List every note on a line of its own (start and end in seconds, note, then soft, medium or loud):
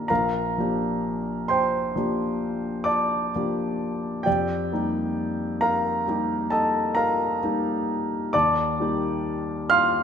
0.00 0.12 D#3 soft
0.00 0.12 A#3 soft
0.00 0.12 D4 soft
0.00 0.12 G4 soft
0.00 0.12 A4 soft
0.00 0.10 A#4 soft
0.00 0.12 D#5 soft
0.00 0.10 F5 soft
0.00 0.12 A5 medium
0.00 0.08 A#5 medium
0.08 0.56 A#1 soft
0.08 1.46 A#4 soft
0.08 1.46 F5 soft
0.08 1.49 A#5 medium
0.58 1.92 F3 soft
0.58 1.93 A#3 soft
0.58 1.93 D4 soft
0.58 1.94 G4 soft
1.48 2.84 C5 medium
1.48 2.83 G5 soft
1.48 2.87 C6 medium
1.96 3.31 F3 soft
1.96 3.31 A#3 soft
1.96 3.31 D4 soft
1.96 3.31 G4 soft
2.84 4.22 D5 medium
2.84 4.21 A5 soft
2.84 4.25 D6 medium
3.36 4.23 F3 soft
3.36 4.23 A#3 soft
3.36 4.23 D4 soft
3.36 4.24 G4 soft
4.23 4.71 F2 soft
4.23 4.72 G4 soft
4.23 5.58 D5 soft
4.23 5.61 G5 medium
4.72 6.03 G3 soft
4.72 6.03 A#3 soft
4.72 6.03 D#4 soft
4.72 6.03 G4 soft
5.61 6.47 A#4 soft
5.61 6.47 F5 medium
5.61 6.50 A#5 medium
6.08 7.38 G3 soft
6.08 7.39 A#3 soft
6.08 7.39 D#4 soft
6.08 7.39 G4 soft
6.50 6.93 A4 soft
6.50 6.93 D#5 soft
6.50 6.96 A5 medium
6.95 8.30 A#4 medium
6.95 8.30 F5 medium
6.95 8.33 A#5 medium
7.43 8.31 G3 soft
7.43 8.30 A#3 soft
7.43 8.31 D#4 soft
7.43 8.31 G4 soft
8.33 8.79 D#2 soft
8.33 9.67 D5 medium
8.33 9.68 A5 medium
8.33 9.71 D6 medium
8.80 10.03 G3 soft
8.80 10.03 A#3 soft
8.80 10.03 D#4 soft
8.80 10.03 G4 soft
9.70 10.03 F5 medium
9.70 10.03 C6 medium
9.70 10.03 F6 medium